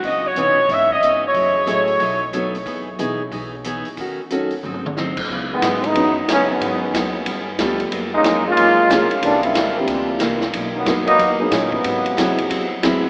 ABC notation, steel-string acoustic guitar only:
X:1
M:4/4
L:1/8
Q:"Swing" 1/4=183
K:E
V:1 name="Steel-string acoustic guitar"
[C,E,B,D] z [C,E,B,D] z [C,E,B,D] z [C,E,B,D] z | [F,A,EG] z [F,A,EG] z [B,,F,A,D] z [B,,F,A,D] z | [E,B,DG] z [E,B,DG] z [E,B,DG] z [E,B,DG] z | [D,A,CF] z [D,A,CF] z [G,,F,^B,D] z [G,,F,B,D] z |
[K:G#phr] [C,F,B,E] z [C,F,B,E] z [C,F,B,E] z [C,F,B,E] z | [G,,F,B,D] z [G,,F,B,D] z [=G,B,=FA] z [G,B,FA] z | [F,^A,^EG] z [F,A,EG] z [F,A,EG] z [F,A,EG] z | [=C,E,_B,=D] z [C,E,B,D] z [C,E,B,D] z [C,E,B,D] z |
[B,,F,^A,D] z [B,,F,A,D] z [B,,F,A,D] z [B,,F,A,D] z | [G,,F,^B,E] z [G,,F,B,E] z [G,,F,B,E] z [G,,F,B,E] z |]